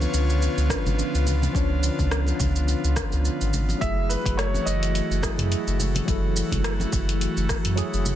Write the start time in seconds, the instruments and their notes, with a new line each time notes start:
Already playing: analog synth pad D3 B3 F4 C#5, tine electric piano F3 C#4 D4 B4
0.01 high conga, shaker
0.14 sub bass C#2, shaker
0.30 shaker
0.42 shaker
0.57 sub bass C#2, shaker
0.68 tine electric piano F3 C#4 D4 B4, kick, cross-stick, high conga, shaker
0.86 sub bass G#1, low conga, shaker
0.99 shaker
1.14 sub bass C#2, shaker
1.26 low conga, shaker
1.42 high conga, low conga, shaker
1.51 sub bass C#2, tine electric piano F3 C#4 D4, kick, shaker
1.56 tine electric piano C#5
1.83 shaker
1.99 sub bass C#2, kick, low conga, shaker
2.11 cross-stick, shaker
2.27 high conga, shaker
2.40 sub bass C#2, kick, low conga, shaker
2.56 shaker
2.68 shaker
2.84 sub bass C#2, shaker
2.96 kick, cross-stick, high conga, shaker
3.12 sub bass C#2, shaker
3.25 shaker
3.41 sub bass G#1, shaker
3.53 low conga, shaker
3.69 high conga, shaker
3.79 sub bass F#1, analog synth pad E3 A3 F#4, tine electric piano F#3 A3 E4, grand piano E5, kick, closed hi-hat, shaker
3.84 tine electric piano G#4
4.09 grand piano B4, shaker
4.26 sub bass F#1, kick, closed hi-hat, shaker
4.37 grand piano C#5, cross-stick, closed hi-hat, shaker
4.54 high conga, shaker
4.65 sub bass F#1, grand piano D#5, shaker
4.83 closed hi-hat, shaker
4.95 closed hi-hat, shaker
5.11 sub bass F#1, shaker
5.22 tine electric piano F#3 A3 E4 G#4, kick, cross-stick, high conga, shaker
5.38 sub bass F#2, closed hi-hat, low conga, shaker
5.52 closed hi-hat, shaker
5.67 sub bass F#1, shaker
5.80 low conga, shaker
5.95 closed hi-hat, high conga, low conga, shaker
6.05 sub bass F#1, tine electric piano F#3 A3 E4, kick, closed hi-hat, shaker
6.10 tine electric piano A4
6.36 shaker
6.52 sub bass F#1, kick, closed hi-hat, low conga, shaker
6.64 cross-stick, closed hi-hat, shaker
6.80 high conga, shaker
6.93 sub bass F#1, kick, shaker
7.09 closed hi-hat, shaker
7.21 closed hi-hat, shaker
7.37 sub bass F#1, shaker
7.49 kick, cross-stick, high conga, shaker
7.65 sub bass F#2, closed hi-hat, shaker
7.76 tine electric piano F#3 A3 E4 G#4, closed hi-hat, shaker
7.94 sub bass F#1, shaker
8.05 low conga, shaker